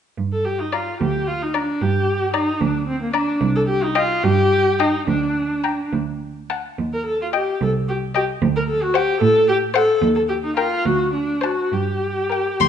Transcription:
0.18 0.85 G2 soft
0.33 0.46 A4 soft
0.45 0.61 G4 soft
0.60 0.74 D#4 soft
0.73 1.00 F4 soft
0.73 0.94 D5 soft
0.73 0.94 A#5 soft
1.00 1.66 D2 soft
1.00 1.29 G4 soft
1.27 1.44 F4 medium
1.42 1.56 D#4 soft
1.54 1.83 D4 soft
1.54 1.75 D5 soft
1.54 1.75 A#5 soft
1.81 2.45 G2 medium
1.81 2.33 G4 medium
2.34 2.62 D#4 medium
2.34 2.54 D5 soft
2.34 2.54 A#5 soft
2.60 3.25 D2 medium
2.60 2.87 D4 soft
2.88 3.01 C4 medium
3.02 3.14 A#3 medium
3.14 3.41 D4 medium
3.14 3.34 D5 soft
3.14 3.34 A#5 medium
3.41 4.07 C2 medium
3.56 3.61 A4 medium
3.68 3.85 G4 medium
3.83 3.98 D#4 medium
3.95 4.24 F4 medium
3.95 4.16 D#5 medium
3.95 4.16 G5 soft
4.23 4.92 G2 medium
4.23 4.81 G4 medium
4.79 5.07 D#4 medium
4.79 5.01 D#5 soft
4.79 5.01 G5 soft
5.07 5.76 D2 medium
5.07 5.91 D4 medium
5.64 5.85 G5 soft
5.64 5.85 A#5 soft
5.93 6.62 D2 soft
6.50 6.71 F#5 soft
6.50 6.71 A5 soft
6.79 7.45 D#2 soft
6.93 7.05 A#4 soft
7.06 7.20 A4 medium
7.22 7.27 F4 soft
7.33 7.61 G4 soft
7.33 7.54 D#5 soft
7.33 7.54 G5 soft
7.61 8.26 C2 medium
7.61 7.70 A4 medium
7.88 7.96 G4 medium
8.15 8.24 G4 medium
8.15 8.35 D#5 soft
8.15 8.35 G5 soft
8.42 9.06 D2 medium
8.56 8.61 A#4 medium
8.68 8.84 A4 medium
8.83 8.96 F#4 medium
8.94 9.20 G4 medium
8.94 9.14 C5 medium
8.94 9.15 F#5 medium
9.21 9.86 A2 medium
9.21 9.47 A4 medium
9.48 9.56 G4 medium
9.74 10.01 A4 medium
9.74 9.94 C5 medium
9.74 9.95 F#5 medium
10.02 10.69 D#2 medium
10.15 10.21 A4 medium
10.29 10.34 G4 medium
10.44 10.56 D#4 medium
10.57 10.87 F4 medium
10.57 10.78 A#4 medium
10.57 10.78 G5 medium
10.85 11.55 D2 medium
10.85 11.12 F#4 medium
11.13 11.44 D4 medium
11.42 11.74 F#4 medium
11.42 11.64 C5 soft
11.42 11.65 A5 soft
11.72 12.43 G2 soft
11.72 12.69 G4 medium
12.30 12.52 A#4 soft
12.30 12.53 G5 soft
12.60 12.69 D2 soft
12.60 12.66 C6 soft

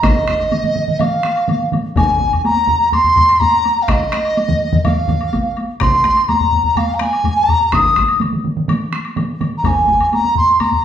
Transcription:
0.02 1.00 D#5 medium
0.02 taiko rim medium
0.02 taiko medium
0.02 taiko high medium
0.02 high woodblock medium
0.16 taiko high soft
0.28 taiko rim medium
0.28 taiko medium
0.28 taiko high soft
0.40 taiko high soft
0.40 high woodblock soft
0.51 taiko mid medium
0.51 taiko high medium
0.51 high woodblock soft
0.63 taiko mid medium
0.63 taiko high medium
0.76 taiko mid medium
0.76 taiko high soft
0.88 taiko mid medium
0.88 taiko high soft
0.99 1.72 F5 medium
0.99 taiko mid loud
0.99 taiko high medium
0.99 high woodblock soft
1.12 taiko high soft
1.23 taiko rim medium
1.23 taiko high medium
1.23 high woodblock soft
1.37 taiko high soft
1.37 high woodblock soft
1.48 taiko mid medium
1.48 taiko high medium
1.48 high woodblock soft
1.61 taiko high soft
1.72 taiko mid medium
1.72 taiko high soft
1.72 high woodblock soft
1.85 taiko high soft
1.96 2.41 G#5 medium
1.96 taiko medium
1.96 taiko low-mid medium
1.96 taiko high medium
1.96 high woodblock soft
2.09 taiko high soft
2.20 taiko medium
2.20 taiko low-mid medium
2.20 taiko high soft
2.32 taiko low-mid medium
2.32 taiko high soft
2.32 high woodblock soft
2.44 2.89 A#5 medium
2.44 taiko high medium
2.44 high woodblock soft
2.56 taiko high soft
2.68 taiko low-mid medium
2.68 taiko high soft
2.81 taiko high soft
2.92 3.41 C6 medium
2.92 taiko low-mid medium
2.92 taiko high medium
2.92 high woodblock soft
3.04 taiko low-mid medium
3.04 taiko high soft
3.16 taiko low-mid medium
3.16 taiko high soft
3.16 high woodblock soft
3.29 taiko high soft
3.29 high woodblock soft
3.39 3.83 A#5 medium
3.39 taiko low-mid medium
3.39 taiko high medium
3.39 high woodblock soft
3.53 taiko high soft
3.65 taiko high soft
3.65 high woodblock soft
3.77 taiko high soft
3.82 3.90 F5 medium
3.88 4.85 D#5 medium
3.88 taiko rim medium
3.88 taiko medium
3.88 taiko high medium
3.88 high woodblock medium
4.12 taiko rim medium
4.12 taiko high soft
4.25 taiko high soft
4.25 high woodblock soft
4.37 taiko high medium
4.37 high woodblock soft
4.48 taiko low-mid medium
4.48 taiko mid medium
4.48 taiko high soft
4.61 taiko high soft
4.73 taiko low-mid medium
4.73 taiko mid medium
4.73 taiko high soft
4.84 5.56 F5 medium
4.84 taiko low-mid medium
4.84 taiko mid medium
4.84 taiko high medium
4.84 high woodblock medium
4.97 taiko high soft
5.08 taiko low-mid medium
5.08 taiko mid medium
5.08 taiko high soft
5.08 high woodblock soft
5.21 taiko high soft
5.21 high woodblock soft
5.33 taiko medium
5.33 taiko high medium
5.33 high woodblock soft
5.45 taiko high soft
5.57 taiko high soft
5.57 high woodblock soft
5.69 taiko high soft
5.80 6.29 C6 medium
5.80 taiko rim medium
5.80 taiko medium
5.80 taiko high medium
5.80 high woodblock soft
5.93 taiko high soft
6.04 taiko rim medium
6.04 taiko medium
6.04 taiko high soft
6.17 taiko high soft
6.17 high woodblock soft
6.28 6.78 A#5 medium
6.28 taiko low-mid medium
6.28 taiko high medium
6.28 high woodblock soft
6.40 taiko low-mid medium
6.40 taiko high soft
6.52 taiko low-mid medium
6.52 taiko high soft
6.64 taiko low-mid medium
6.64 taiko high soft
6.75 6.95 F5 medium
6.75 taiko low-mid medium
6.75 taiko high medium
6.75 high woodblock medium
6.89 taiko high soft
6.94 7.02 A#5 soft
6.99 7.38 G#5 medium
6.99 taiko rim medium
6.99 taiko high soft
6.99 high woodblock soft
7.13 taiko high soft
7.13 high woodblock soft
7.24 taiko low-mid medium
7.24 taiko high medium
7.24 high woodblock soft
7.36 7.74 A#5 medium
7.36 taiko high soft
7.48 taiko low-mid medium
7.48 taiko high soft
7.48 high woodblock soft
7.62 taiko high soft
7.72 8.20 D#6 medium
7.72 taiko rim medium
7.72 taiko medium
7.72 taiko high medium
7.72 high woodblock medium
7.85 taiko high soft
7.96 taiko rim medium
7.96 taiko medium
7.96 taiko high soft
8.08 taiko high soft
8.08 high woodblock soft
8.20 taiko mid medium
8.20 taiko high medium
8.20 high woodblock soft
8.32 taiko mid medium
8.32 taiko high soft
8.44 taiko mid medium
8.44 taiko high soft
8.57 taiko mid medium
8.57 taiko high soft
8.68 taiko mid medium
8.68 taiko high medium
8.68 high woodblock medium
8.81 taiko high soft
8.92 taiko rim medium
8.92 taiko high soft
8.92 high woodblock soft
9.04 taiko high soft
9.04 high woodblock soft
9.16 taiko mid medium
9.16 taiko high medium
9.16 high woodblock soft
9.29 taiko high soft
9.41 taiko mid medium
9.41 taiko high soft
9.41 high woodblock soft
9.52 taiko high soft
9.57 9.68 A#5 medium
9.64 10.12 G#5 medium
9.64 taiko medium
9.64 taiko low-mid medium
9.64 taiko high medium
9.64 high woodblock soft
9.76 taiko high soft
9.88 taiko medium
9.88 taiko low-mid medium
9.88 taiko high medium
9.99 taiko low-mid medium
9.99 taiko high soft
9.99 high woodblock soft
10.12 10.34 A#5 medium
10.12 taiko high medium
10.12 high woodblock soft
10.24 taiko high soft
10.35 10.53 C6 medium
10.35 taiko low-mid medium
10.35 taiko high soft
10.53 10.61 C6 medium
10.60 10.85 A#5 medium
10.60 taiko low-mid medium
10.60 taiko high medium
10.60 high woodblock medium
10.72 taiko low-mid medium
10.72 taiko high soft

